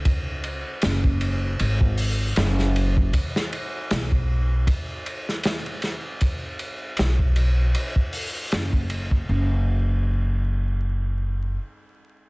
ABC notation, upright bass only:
X:1
M:4/4
L:1/8
Q:"Swing 16ths" 1/4=78
K:Bmix
V:1 name="Upright bass" clef=bass
C,, z F,,,2 G,,,2 F,,,2 | z2 B,,,2 z4 | z2 B,,,2 z2 F,,,2 | F,,,6 z2 |]